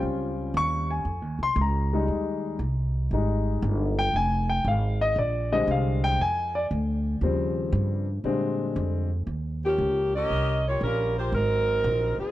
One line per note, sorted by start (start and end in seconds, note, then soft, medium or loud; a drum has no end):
0.00 0.53 C#2 medium
0.00 1.02 G3 medium
0.00 1.02 C4 soft
0.00 1.03 C#4 soft
0.00 1.03 F4 medium
0.54 1.04 D#2 loud
0.54 0.90 C#6 loud
0.91 1.38 G#5 medium
1.05 1.22 F2 medium
1.22 1.38 D#2 medium
1.39 1.55 C2 medium
1.43 1.58 C6 medium
1.56 2.06 C#2 loud
1.61 2.07 A#5 medium
1.93 2.57 G3 medium
1.93 2.58 G#3 soft
1.93 2.58 D#4 medium
2.08 2.58 D#2 medium
2.59 3.09 C2 medium
3.11 3.61 G#1 medium
3.11 3.94 G3 soft
3.11 3.94 G#3 soft
3.11 3.95 D#4 medium
3.62 4.12 G1 loud
3.99 4.14 G5 medium
4.13 4.64 F1 medium
4.13 4.49 G#5 medium
4.49 4.65 G5 medium
4.65 5.15 G#1 loud
4.65 5.00 F5 medium
5.01 5.17 D#5 medium
5.16 5.66 A#1 loud
5.16 5.51 D5 medium
5.52 6.16 D3 soft
5.52 6.16 G3 medium
5.52 6.16 G#3 soft
5.52 6.17 C4 medium
5.52 5.68 D#5 medium
5.67 6.17 C2 loud
5.67 6.03 F5 medium
6.04 6.19 G5 medium
6.18 6.69 F2 medium
6.18 6.54 G#5 medium
6.55 6.65 D5 medium
6.71 7.20 D2 loud
7.21 7.71 D#2 medium
7.21 8.04 C#3 soft
7.21 8.04 F3 soft
7.21 8.05 G3 medium
7.21 8.05 C4 medium
7.72 8.23 G2 loud
8.24 8.74 A#2 medium
8.24 9.07 D3 medium
8.24 9.07 G3 soft
8.24 9.07 G#3 medium
8.24 9.07 C4 medium
8.76 9.26 F2 loud
9.27 9.77 D#2 medium
9.65 10.12 F3 medium
9.65 10.11 A#3 medium
9.65 10.12 C#4 medium
9.65 10.12 G4 loud
9.78 10.28 C#2 medium
10.16 10.63 C#4 loud
10.16 10.63 G4 loud
10.16 10.63 A#4 loud
10.16 10.63 D#5 loud
10.30 10.80 C2 medium
10.68 10.82 A#3 medium
10.68 10.82 F4 medium
10.68 10.82 G4 medium
10.68 10.82 C#5 loud
10.81 11.31 A#1 medium
10.81 11.15 G3 medium
10.81 11.15 C#4 medium
10.81 11.15 F4 medium
10.81 11.15 A#4 loud
11.18 11.33 A#3 medium
11.18 11.33 F4 medium
11.18 11.33 G4 medium
11.18 11.33 C5 loud
11.32 11.82 G#1 medium
11.32 12.16 F#3 medium
11.32 12.16 C4 medium
11.32 12.16 D#4 medium
11.32 12.16 A#4 loud
11.84 12.16 A#1 loud
12.18 12.31 F#3 medium
12.18 12.31 C4 medium
12.18 12.31 D#4 medium
12.18 12.31 G#4 medium
12.18 muted upright bass stroke soft